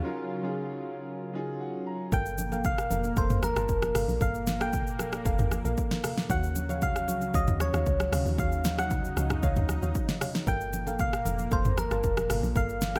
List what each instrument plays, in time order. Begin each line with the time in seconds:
Already playing: analog synth pad C#3 F#3 F4, grand piano F#3 C#4 D#4 F4 G#4 A#4
0.03 grand piano F#3 C#4 D#4 F4 A#4
0.42 grand piano F#3 C#4 D#4 F4 G#4
1.33 grand piano F#3 C#4 D#4 F4 G#4
1.60 grand piano F#5
1.87 grand piano A#5
2.12 log drum bass G1, analog synth pad A#2 A#3, synth pluck A4 A#4 F5, soft synth lead G5, kick, shaker
2.26 shaker
2.38 high conga, shaker
2.52 synth pluck A4 A#4 F5, high conga, shaker
2.64 soft synth lead F5, kick, low conga, shaker
2.78 cross-stick, shaker
2.90 log drum bass F1, synth pluck A4 A#4 F5, high conga, shaker
3.04 high conga, shaker
3.16 log drum bass F1, synth pluck A4 A#4 F5, soft synth lead C5, kick, shaker
3.30 log drum bass G1, mid tom, shaker
3.43 soft synth lead A#4, cross-stick, high conga, shaker
3.56 log drum bass G1, synth pluck A#4 F5 A5, cross-stick, shaker
3.69 log drum bass F1, kick, shaker
3.82 cross-stick, high conga, shaker
3.95 log drum bass G1, synth pluck A4 A#4 F5, cross-stick, open hi-hat, low conga, shaker
4.08 log drum bass A#1, high conga, shaker
4.21 log drum bass G1, analog synth pad A#3, synth pluck A4 A#4 F5, soft synth lead F5, kick, shaker
4.35 shaker
4.47 snare, high conga, shaker
4.60 synth pluck A4 A#4 F5, soft synth lead G5, cross-stick, high conga, shaker
4.73 kick, low conga, shaker
4.87 shaker
4.99 log drum bass F1, synth pluck A4 A#4 F5, cross-stick, high conga, shaker
5.12 cross-stick, high conga, shaker
5.25 log drum bass F1, synth pluck A4 A#4 F5, kick, shaker
5.39 log drum bass G1, mid tom, shaker
5.51 cross-stick, high conga, shaker
5.65 log drum bass A#1, synth pluck A4 A#4 F5, shaker
5.78 kick, shaker
5.91 snare, high conga, shaker
6.03 synth pluck A4 A#4 F5, cross-stick, open hi-hat, low conga, shaker
6.17 snare, high conga, shaker
6.29 log drum bass D#2, analog synth pad C#3 F#3, synth pluck F#4 C#5 F5, soft synth lead F#5, kick, shaker
6.43 shaker
6.56 high conga, shaker
6.69 synth pluck F#4 C#5 F5, high conga, shaker
6.82 soft synth lead F5, kick, low conga, shaker
6.96 cross-stick, shaker
7.08 log drum bass C#2, synth pluck F#4 C#5 F5, high conga, shaker
7.21 high conga, shaker
7.34 log drum bass C#2, synth pluck F#4 C#5 F5, soft synth lead D#5, kick, shaker
7.47 log drum bass D#2, mid tom, shaker
7.60 soft synth lead C#5, cross-stick, high conga, shaker
7.73 log drum bass D#2, synth pluck F#4 C#5 F5, cross-stick, shaker
7.86 log drum bass C#2, kick, shaker
8.00 cross-stick, high conga, shaker
8.12 log drum bass D2, synth pluck F#4 C#5 F5, cross-stick, open hi-hat, low conga, shaker
8.26 log drum bass D#2, high conga, shaker
8.38 log drum bass D#2, analog synth pad D#4, synth pluck F#4 C#5 F5, soft synth lead F5, kick, shaker
8.52 shaker
8.64 snare, high conga, shaker
8.78 synth pluck F#4 C#5 F5, soft synth lead F#5, cross-stick, high conga, shaker
8.90 kick, low conga, shaker
9.05 shaker
9.16 log drum bass C#2, synth pluck F#4 C#5 F5, cross-stick, high conga, shaker
9.30 cross-stick, mid tom, high conga, shaker
9.43 log drum bass C#2, synth pluck F#4 C#5 F5, kick, shaker
9.56 log drum bass D2, mid tom, shaker
9.69 cross-stick, high conga, shaker
9.82 log drum bass D#2, synth pluck F#4 C#5 F5, shaker
9.95 kick, shaker
10.09 snare, high conga, shaker
10.21 synth pluck F#4 C#5 F5, cross-stick, open hi-hat, low conga, shaker
10.35 snare, high conga, shaker
10.47 log drum bass G1, analog synth pad A#2 A#3, synth pluck A4 A#4 F5, soft synth lead G5, kick, shaker
10.61 shaker
10.73 high conga, shaker
10.86 synth pluck A4 A#4 F5, high conga, shaker
10.99 soft synth lead F5, kick, low conga, shaker
11.13 cross-stick, shaker
11.25 log drum bass F1, synth pluck A4 A#4 F5, high conga, shaker
11.39 high conga, shaker
11.51 log drum bass F1, synth pluck A4 A#4 F5, soft synth lead C5, kick, shaker
11.65 log drum bass G1, mid tom, shaker
11.78 soft synth lead A#4, cross-stick, high conga, shaker
11.91 log drum bass G1, synth pluck A#4 F5 A5, cross-stick, shaker
12.03 log drum bass F1, kick, shaker
12.17 cross-stick, high conga, shaker
12.29 log drum bass G1, synth pluck A4 A#4 F5, cross-stick, open hi-hat, low conga, shaker
12.43 log drum bass A#1, high conga, shaker
12.56 log drum bass G1, analog synth pad A#3, synth pluck A4 A#4 F5, soft synth lead F5, kick, shaker
12.69 shaker
12.81 snare, high conga, shaker
12.95 synth pluck A4 A#4 F5, cross-stick, high conga, shaker